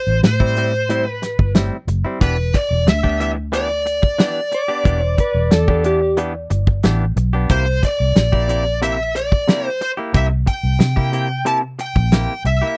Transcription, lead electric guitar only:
0.00 0.20 C5 medium
0.25 1.08 C5 medium
1.08 1.52 B4 medium
2.22 2.56 B4 medium
2.55 2.88 D5 medium
2.89 3.19 E5 loud
3.21 3.30 E5 medium
3.54 6.80 D5 medium
7.51 7.81 C5 medium
7.85 8.79 D5 medium
8.83 9.13 E5 medium
9.16 9.67 D5 medium
9.67 9.81 C5 medium
9.81 9.90 C5 medium
10.16 10.25 E5 medium
10.48 11.47 G5 medium
11.47 11.56 A5 loud
11.81 12.42 G5 medium
12.47 12.77 E5 medium

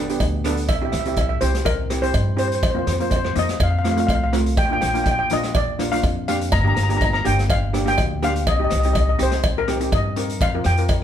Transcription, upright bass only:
0.00 0.17 G1 medium
0.21 0.69 D2 medium
0.69 0.91 C2 loud
0.93 1.38 C2 medium
1.42 2.11 C2 medium
2.14 2.63 G2 medium
2.63 2.85 F2 loud
2.87 3.32 F2 medium
3.36 3.58 F2 medium
3.60 4.05 F2 medium
4.08 4.57 C2 medium
4.57 4.80 A#1 loud
4.83 5.27 A#1 medium
5.31 6.00 A#1 medium
6.03 6.54 F2 medium
6.53 6.75 G1 loud
6.77 7.21 G1 medium
7.26 7.95 G1 medium
7.98 8.47 D2 medium
8.47 8.69 C2 loud
8.72 9.16 C2 medium
9.20 9.89 C2 medium
9.92 10.41 G2 medium
10.41 10.63 F2 medium
10.65 11.04 F2 medium

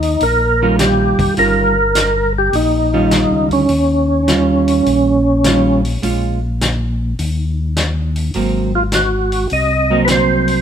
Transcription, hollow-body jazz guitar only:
0.62 1.35 D#3 medium
0.62 1.35 G3 medium
0.62 1.35 C#4 medium
0.62 1.35 F4 medium
1.37 1.74 D#3 medium
1.37 1.74 G3 medium
1.37 1.74 C#4 medium
1.37 1.74 F4 medium
2.94 3.66 D#3 medium
2.94 3.66 G3 medium
2.94 3.67 C#4 medium
2.94 3.67 F4 medium
4.27 5.18 D#3 soft
4.27 5.18 G3 medium
4.27 5.18 C#4 soft
4.27 5.19 F4 medium
5.45 5.80 D#3 medium
5.45 5.81 G3 medium
5.45 5.81 C#4 medium
5.45 5.81 F4 medium
6.02 6.38 G#3 medium
6.02 6.39 C#4 medium
6.02 6.39 F4 medium
8.35 8.70 F#3 medium
8.35 8.71 A#3 medium
8.35 8.71 C4 medium
9.90 10.62 F#3 medium
9.90 10.62 A#3 medium
9.90 10.62 C4 medium

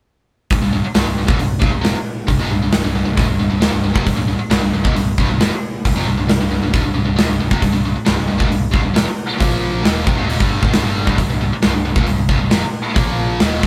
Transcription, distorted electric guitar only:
0.52 0.61 C2 medium
0.52 0.61 G2 medium
0.62 0.71 C2 medium
0.62 0.71 G2 medium
0.73 0.83 C2 medium
0.73 0.84 G2 medium
0.84 muted distorted electric guitar stroke medium
0.95 1.04 C2 medium
0.95 1.05 G2 loud
1.06 1.16 C2 medium
1.06 1.16 G2 medium
1.18 1.27 C2 medium
1.18 1.27 G2 medium
1.27 1.38 D#2 medium
1.27 1.38 A#2 medium
1.39 1.57 C2 medium
1.39 1.57 G2 medium
1.60 1.70 C2 medium
1.60 1.70 G2 loud
1.71 1.81 C2 medium
1.71 1.82 G2 medium
1.81 1.93 F2 medium
1.81 1.93 C3 loud
2.27 2.39 C2 medium
2.27 2.39 G2 medium
2.39 2.50 F2 medium
2.39 2.50 C3 loud
2.51 2.61 C2 medium
2.51 2.61 G2 medium
2.62 2.71 C2 medium
2.62 2.72 G2 medium
2.72 2.83 C2 medium
2.72 2.83 G2 medium
2.84 2.94 C2 medium
2.84 2.94 G2 medium
2.95 3.04 C2 medium
2.95 3.04 G2 medium
3.05 3.16 C2 medium
3.05 3.17 G2 medium
3.17 3.26 D2 medium
3.17 3.27 A2 loud
3.27 3.38 C2 medium
3.27 3.39 G2 medium
3.39 3.49 C2 medium
3.39 3.49 G2 medium
3.50 3.60 C2 medium
3.50 3.61 G2 medium
3.61 3.71 D#2 medium
3.61 3.72 A#2 loud
3.72 3.82 C2 medium
3.72 3.83 G2 medium
3.84 3.93 C2 medium
3.84 3.94 G2 medium
3.94 4.04 F2 medium
3.94 4.05 C3 medium
4.04 4.15 C2 medium
4.04 4.15 G2 medium
4.16 4.26 C2 medium
4.16 4.26 G2 medium
4.27 4.38 C2 medium
4.27 4.39 G2 medium
4.39 muted distorted electric guitar stroke medium
4.50 4.61 C2 medium
4.50 4.61 G2 loud
4.62 4.72 C2 medium
4.62 4.73 G2 medium
4.73 4.84 C2 medium
4.73 4.85 G2 medium
4.84 4.95 D#2 medium
4.84 4.95 A#2 loud
4.96 5.14 C2 medium
4.96 5.14 G2 medium
5.20 5.29 C2 medium
5.20 5.29 G2 loud
5.31 5.40 C2 medium
5.31 5.41 G2 medium
5.41 5.51 F2 loud
5.41 5.51 C3 loud
5.85 5.95 C2 medium
5.85 5.96 G2 medium
5.96 6.06 F2 medium
5.96 6.06 C3 medium
6.07 6.16 C2 medium
6.07 6.17 G2 medium
6.18 6.27 C2 medium
6.18 6.27 G2 medium
6.28 6.39 C2 medium
6.28 6.39 G2 medium
6.40 6.50 C2 medium
6.40 6.50 G2 medium
6.51 6.61 C2 medium
6.51 6.62 G2 medium
6.62 6.73 C2 medium
6.62 6.74 G2 medium
6.73 6.83 D2 loud
6.73 6.83 A2 loud
6.83 6.93 C2 medium
6.83 6.94 G2 medium
6.94 7.03 C2 medium
6.94 7.04 G2 medium
7.05 7.16 C2 medium
7.05 7.17 G2 medium
7.16 7.27 D#2 loud
7.16 7.28 A#2 loud
7.30 7.38 C2 medium
7.30 7.39 G2 medium
7.40 7.51 C2 medium
7.40 7.51 G2 medium
7.51 7.61 F2 medium
7.51 7.62 C3 medium
7.62 7.72 C2 medium
7.62 7.72 G2 medium
7.73 7.84 C2 medium
7.73 7.84 G2 medium
7.85 7.95 C2 medium
7.85 7.96 G2 medium
7.96 muted distorted electric guitar stroke medium
8.06 8.16 C2 loud
8.06 8.16 G2 loud
8.17 8.27 C2 medium
8.17 8.28 G2 medium
8.28 8.38 C2 medium
8.28 8.39 G2 medium
8.38 8.50 D#2 medium
8.38 8.50 A#2 loud
8.50 8.68 C2 medium
8.50 8.69 G2 medium
8.71 8.82 C2 medium
8.71 8.82 G2 loud
8.83 8.93 C2 medium
8.83 8.94 G2 medium
8.94 9.05 F2 medium
8.94 9.05 C3 loud
9.38 9.82 A#2 medium
9.38 9.82 F3 loud
9.38 9.83 A#3 loud
9.82 10.04 D#2 medium
9.82 10.05 A#2 loud
9.82 10.06 D#3 loud
10.05 10.16 F2 medium
10.05 10.17 C3 loud
10.16 10.26 C2 medium
10.16 10.27 G2 medium
10.27 10.38 D#2 medium
10.27 10.38 A#2 loud
10.38 10.61 G2 medium
10.38 10.61 D3 medium
10.38 10.61 G3 loud
10.61 10.72 G#2 medium
10.61 10.73 D#3 medium
10.73 10.83 C2 medium
10.73 10.82 G2 loud
10.84 11.05 G2 medium
10.84 11.06 D3 medium
10.84 11.06 G3 loud
11.06 11.17 C2 medium
11.06 11.17 G2 medium
11.19 11.29 C2 medium
11.19 11.29 G2 medium
11.30 11.40 C2 medium
11.30 11.41 G2 medium
11.41 11.52 C2 medium
11.41 11.53 G2 medium
11.53 muted distorted electric guitar stroke medium
11.63 11.73 C2 loud
11.63 11.72 G2 loud
11.74 11.84 C2 medium
11.74 11.84 G2 medium
11.85 11.96 C2 medium
11.85 11.96 G2 medium
11.96 12.07 D#2 medium
11.96 12.07 A#2 medium
12.08 12.25 C2 medium
12.08 12.26 G2 medium
12.29 12.38 C2 medium
12.29 12.38 G2 loud
12.39 12.50 C2 medium
12.39 12.51 G2 medium
12.51 12.62 F2 medium
12.51 12.62 C3 loud
12.95 13.40 A#2 medium
12.95 13.40 F3 loud
12.95 13.40 A#3 loud
13.40 13.62 D#2 medium
13.40 13.62 A#2 medium
13.40 13.63 D#3 loud
13.63 13.67 F2 medium
13.63 13.67 C3 loud

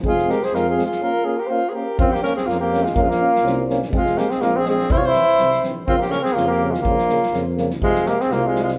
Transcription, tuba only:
0.03 0.30 F1 loud
0.52 0.79 F2 medium
1.98 2.25 A#1 medium
2.46 2.96 F2 medium
2.95 3.22 A#1 medium
3.43 3.94 C2 loud
3.92 4.19 F1 medium
4.42 4.92 A#1 medium
4.91 5.18 C2 medium
5.39 5.61 C2 medium
5.63 5.87 A#1 medium
5.87 6.14 A#1 medium
6.37 6.86 F2 medium
6.85 7.12 A#1 medium
7.33 7.84 F2 medium
7.83 8.10 F1 medium
8.31 8.79 C2 medium

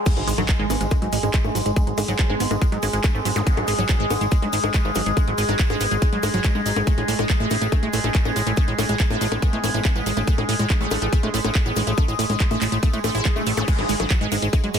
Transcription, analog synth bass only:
0.17 0.23 G#1 medium
0.27 0.33 G#1 loud
0.38 0.44 G#1 medium
0.59 0.65 G#1 medium
0.70 0.76 G#1 medium
0.81 0.87 G#1 medium
1.02 1.08 G#2 medium
1.13 1.19 G#1 loud
1.23 1.29 G#1 medium
1.45 1.51 G#1 loud
1.55 1.61 G#1 loud
1.66 1.72 G#1 loud
1.87 1.93 G#1 medium
1.98 2.04 G#1 loud
2.08 2.14 G#1 medium
2.30 2.36 G#1 medium
2.40 2.46 G#1 loud
2.51 2.57 G#1 medium
2.72 2.78 G#2 medium
2.83 2.89 G#1 loud
2.93 2.99 G#1 medium
3.15 3.21 G#1 medium
3.25 3.31 G#1 loud
3.36 3.42 G#1 loud
3.57 3.63 G#1 medium
3.68 3.74 G#1 loud
3.79 3.85 G#1 loud
4.00 4.06 G#1 medium
4.10 4.16 G#1 loud
4.21 4.27 G#1 medium
4.42 4.48 G#2 medium
4.53 4.59 G#1 loud
4.64 4.70 G#1 medium
4.85 4.91 G#1 medium
4.96 5.02 G#1 loud
5.06 5.12 G#1 loud
5.27 5.33 G#1 medium
5.38 5.44 G#1 loud
5.49 5.55 G#1 medium
5.70 5.76 G#1 medium
5.81 5.87 G#1 loud
5.91 5.97 G#1 medium
6.13 6.19 G#2 medium
6.23 6.29 G#1 loud
6.34 6.40 G#1 medium
6.55 6.61 G#2 medium
6.66 6.72 G#1 loud
6.76 6.82 G#1 medium
6.98 7.04 A1 medium
7.08 7.14 A1 loud
7.19 7.25 A1 loud
7.40 7.46 A1 medium
7.51 7.57 A1 loud
7.62 7.68 A1 medium
7.83 7.89 A2 medium
7.93 7.99 A1 loud
8.04 8.10 A1 medium
8.25 8.31 A1 medium
8.36 8.42 A1 loud
8.47 8.53 A1 loud
8.68 8.74 A1 medium
8.79 8.85 A1 loud
8.89 8.95 A1 medium
9.10 9.16 A1 medium
9.21 9.27 A1 medium
9.32 9.38 A1 medium
9.53 9.59 A2 medium
9.64 9.70 A1 loud
9.74 9.80 A1 medium
9.96 10.02 A1 medium
10.06 10.12 A1 loud
10.17 10.23 A1 medium
10.38 10.44 A1 medium
10.49 10.55 A1 loud
10.59 10.65 A1 medium
10.81 10.87 A1 medium
10.91 10.97 A1 loud
11.02 11.08 A1 medium
11.23 11.29 A2 medium
11.34 11.40 A1 loud
11.44 11.51 A1 loud
11.66 11.72 A1 medium
11.76 11.82 A1 loud
11.87 11.93 A1 medium
12.08 12.14 A1 medium
12.19 12.25 A1 loud
12.30 12.36 A1 medium
12.51 12.57 A1 medium
12.62 12.68 A1 loud
12.72 12.78 A1 medium
12.93 12.99 A2 medium
13.04 13.10 A1 loud
13.15 13.21 A1 medium
13.36 13.42 A2 loud
13.47 13.53 A1 loud
13.57 13.63 A1 medium
13.79 13.85 G#1 medium
13.89 13.95 G#1 loud
14.00 14.06 G#1 medium
14.21 14.27 G#1 medium
14.32 14.38 G#1 loud
14.42 14.48 G#1 medium
14.64 14.70 G#2 medium
14.74 14.79 G#1 loud

